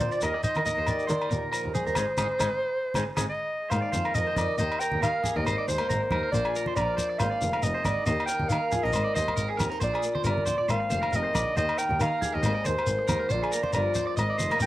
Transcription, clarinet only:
0, 0, Header, 1, 2, 480
1, 0, Start_track
1, 0, Tempo, 436364
1, 246, Time_signature, 4, 2, 24, 8
1, 16128, End_track
2, 0, Start_track
2, 0, Title_t, "Clarinet"
2, 0, Program_c, 0, 71
2, 0, Note_on_c, 0, 74, 72
2, 221, Note_off_c, 0, 74, 0
2, 254, Note_on_c, 0, 75, 79
2, 471, Note_off_c, 0, 75, 0
2, 477, Note_on_c, 0, 75, 76
2, 705, Note_off_c, 0, 75, 0
2, 717, Note_on_c, 0, 75, 83
2, 1169, Note_off_c, 0, 75, 0
2, 1205, Note_on_c, 0, 74, 76
2, 1603, Note_off_c, 0, 74, 0
2, 1910, Note_on_c, 0, 72, 106
2, 3556, Note_off_c, 0, 72, 0
2, 3618, Note_on_c, 0, 75, 86
2, 4068, Note_on_c, 0, 77, 94
2, 4084, Note_off_c, 0, 75, 0
2, 4560, Note_on_c, 0, 75, 85
2, 4576, Note_off_c, 0, 77, 0
2, 5026, Note_off_c, 0, 75, 0
2, 5033, Note_on_c, 0, 75, 93
2, 5272, Note_on_c, 0, 79, 98
2, 5289, Note_off_c, 0, 75, 0
2, 5515, Note_off_c, 0, 79, 0
2, 5522, Note_on_c, 0, 77, 100
2, 5898, Note_on_c, 0, 75, 90
2, 5914, Note_off_c, 0, 77, 0
2, 6238, Note_off_c, 0, 75, 0
2, 6244, Note_on_c, 0, 72, 97
2, 6919, Note_off_c, 0, 72, 0
2, 6948, Note_on_c, 0, 74, 95
2, 7401, Note_off_c, 0, 74, 0
2, 7428, Note_on_c, 0, 74, 95
2, 7903, Note_on_c, 0, 77, 95
2, 7920, Note_off_c, 0, 74, 0
2, 8391, Note_on_c, 0, 75, 90
2, 8407, Note_off_c, 0, 77, 0
2, 8855, Note_off_c, 0, 75, 0
2, 8862, Note_on_c, 0, 75, 93
2, 9076, Note_off_c, 0, 75, 0
2, 9083, Note_on_c, 0, 79, 93
2, 9335, Note_on_c, 0, 77, 92
2, 9351, Note_off_c, 0, 79, 0
2, 9712, Note_on_c, 0, 75, 86
2, 9728, Note_off_c, 0, 77, 0
2, 10065, Note_off_c, 0, 75, 0
2, 10071, Note_on_c, 0, 75, 82
2, 10471, Note_off_c, 0, 75, 0
2, 10813, Note_on_c, 0, 74, 89
2, 11253, Note_off_c, 0, 74, 0
2, 11311, Note_on_c, 0, 74, 87
2, 11774, Note_on_c, 0, 77, 96
2, 11791, Note_off_c, 0, 74, 0
2, 12270, Note_on_c, 0, 75, 90
2, 12287, Note_off_c, 0, 77, 0
2, 12724, Note_off_c, 0, 75, 0
2, 12731, Note_on_c, 0, 75, 99
2, 12958, Note_on_c, 0, 79, 93
2, 12975, Note_off_c, 0, 75, 0
2, 13199, Note_off_c, 0, 79, 0
2, 13214, Note_on_c, 0, 77, 97
2, 13574, Note_on_c, 0, 75, 93
2, 13591, Note_off_c, 0, 77, 0
2, 13927, Note_on_c, 0, 72, 97
2, 13943, Note_off_c, 0, 75, 0
2, 14647, Note_on_c, 0, 74, 97
2, 14663, Note_off_c, 0, 72, 0
2, 15119, Note_off_c, 0, 74, 0
2, 15126, Note_on_c, 0, 74, 90
2, 15571, Note_off_c, 0, 74, 0
2, 15604, Note_on_c, 0, 75, 89
2, 16051, Note_off_c, 0, 75, 0
2, 16083, Note_on_c, 0, 79, 96
2, 16128, Note_off_c, 0, 79, 0
2, 16128, End_track
0, 0, End_of_file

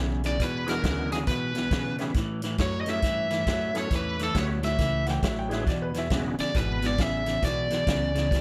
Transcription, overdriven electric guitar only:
0, 0, Header, 1, 2, 480
1, 0, Start_track
1, 0, Tempo, 439239
1, 439, Time_signature, 4, 2, 24, 8
1, 9189, End_track
2, 0, Start_track
2, 0, Title_t, "Overdriven electric guitar"
2, 0, Program_c, 0, 29
2, 286, Note_on_c, 0, 74, 94
2, 456, Note_off_c, 0, 74, 0
2, 458, Note_on_c, 0, 71, 92
2, 752, Note_off_c, 0, 71, 0
2, 757, Note_on_c, 0, 70, 85
2, 1223, Note_off_c, 0, 70, 0
2, 1227, Note_on_c, 0, 68, 66
2, 1282, Note_off_c, 0, 68, 0
2, 1392, Note_on_c, 0, 71, 79
2, 2132, Note_off_c, 0, 71, 0
2, 2854, Note_on_c, 0, 73, 84
2, 3056, Note_off_c, 0, 73, 0
2, 3070, Note_on_c, 0, 75, 75
2, 3152, Note_off_c, 0, 75, 0
2, 3173, Note_on_c, 0, 76, 90
2, 4124, Note_off_c, 0, 76, 0
2, 4128, Note_on_c, 0, 73, 85
2, 4294, Note_off_c, 0, 73, 0
2, 4320, Note_on_c, 0, 71, 85
2, 4580, Note_off_c, 0, 71, 0
2, 4624, Note_on_c, 0, 69, 75
2, 4781, Note_off_c, 0, 69, 0
2, 4785, Note_on_c, 0, 73, 79
2, 4863, Note_off_c, 0, 73, 0
2, 5076, Note_on_c, 0, 76, 79
2, 5513, Note_off_c, 0, 76, 0
2, 6999, Note_on_c, 0, 74, 77
2, 7170, Note_on_c, 0, 71, 84
2, 7171, Note_off_c, 0, 74, 0
2, 7492, Note_off_c, 0, 71, 0
2, 7500, Note_on_c, 0, 74, 91
2, 7663, Note_off_c, 0, 74, 0
2, 7663, Note_on_c, 0, 76, 102
2, 8136, Note_off_c, 0, 76, 0
2, 8140, Note_on_c, 0, 74, 85
2, 9189, Note_off_c, 0, 74, 0
2, 9189, End_track
0, 0, End_of_file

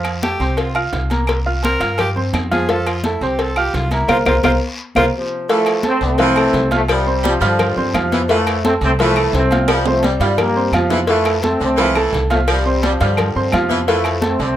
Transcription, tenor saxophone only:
0, 0, Header, 1, 2, 480
1, 0, Start_track
1, 0, Key_signature, -1, "major"
1, 0, Tempo, 349854
1, 1764, Time_signature, 4, 2, 24, 8
1, 19985, End_track
2, 0, Start_track
2, 0, Title_t, "Tenor saxophone"
2, 0, Program_c, 0, 66
2, 315, Note_on_c, 0, 67, 109
2, 798, Note_on_c, 0, 65, 92
2, 818, Note_off_c, 0, 67, 0
2, 1040, Note_off_c, 0, 65, 0
2, 2263, Note_on_c, 0, 70, 117
2, 2702, Note_off_c, 0, 70, 0
2, 2742, Note_on_c, 0, 67, 97
2, 2882, Note_off_c, 0, 67, 0
2, 3467, Note_on_c, 0, 68, 98
2, 3702, Note_on_c, 0, 69, 105
2, 3723, Note_off_c, 0, 68, 0
2, 3934, Note_on_c, 0, 65, 104
2, 3955, Note_off_c, 0, 69, 0
2, 4173, Note_on_c, 0, 64, 92
2, 4194, Note_off_c, 0, 65, 0
2, 4412, Note_off_c, 0, 64, 0
2, 4435, Note_on_c, 0, 67, 99
2, 4677, Note_on_c, 0, 69, 111
2, 4697, Note_off_c, 0, 67, 0
2, 4904, Note_off_c, 0, 69, 0
2, 4918, Note_on_c, 0, 67, 101
2, 5152, Note_on_c, 0, 65, 102
2, 5172, Note_off_c, 0, 67, 0
2, 5369, Note_off_c, 0, 65, 0
2, 5377, Note_on_c, 0, 64, 100
2, 5599, Note_off_c, 0, 64, 0
2, 5623, Note_on_c, 0, 65, 102
2, 5735, Note_off_c, 0, 65, 0
2, 5868, Note_on_c, 0, 65, 95
2, 5979, Note_off_c, 0, 65, 0
2, 6084, Note_on_c, 0, 65, 101
2, 6203, Note_off_c, 0, 65, 0
2, 6822, Note_on_c, 0, 65, 108
2, 6935, Note_off_c, 0, 65, 0
2, 19985, End_track
0, 0, End_of_file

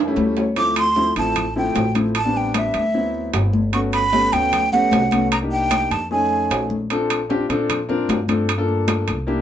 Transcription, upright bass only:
0, 0, Header, 1, 2, 480
1, 0, Start_track
1, 0, Key_signature, -1, "minor"
1, 0, Tempo, 396301
1, 686, Time_signature, 4, 2, 24, 8
1, 11403, End_track
2, 0, Start_track
2, 0, Title_t, "Upright bass"
2, 0, Program_c, 0, 32
2, 0, Note_on_c, 0, 40, 79
2, 154, Note_off_c, 0, 40, 0
2, 202, Note_on_c, 0, 38, 94
2, 1332, Note_off_c, 0, 38, 0
2, 1404, Note_on_c, 0, 33, 78
2, 2077, Note_off_c, 0, 33, 0
2, 2129, Note_on_c, 0, 33, 98
2, 3256, Note_off_c, 0, 33, 0
2, 3323, Note_on_c, 0, 38, 83
2, 3996, Note_off_c, 0, 38, 0
2, 4042, Note_on_c, 0, 31, 105
2, 5171, Note_off_c, 0, 31, 0
2, 5238, Note_on_c, 0, 38, 87
2, 5914, Note_off_c, 0, 38, 0
2, 5956, Note_on_c, 0, 36, 98
2, 7088, Note_off_c, 0, 36, 0
2, 7156, Note_on_c, 0, 41, 91
2, 7832, Note_off_c, 0, 41, 0
2, 7879, Note_on_c, 0, 34, 91
2, 9008, Note_off_c, 0, 34, 0
2, 9080, Note_on_c, 0, 46, 86
2, 9752, Note_off_c, 0, 46, 0
2, 9798, Note_on_c, 0, 43, 95
2, 10926, Note_off_c, 0, 43, 0
2, 10999, Note_on_c, 0, 36, 89
2, 11403, Note_off_c, 0, 36, 0
2, 11403, End_track
0, 0, End_of_file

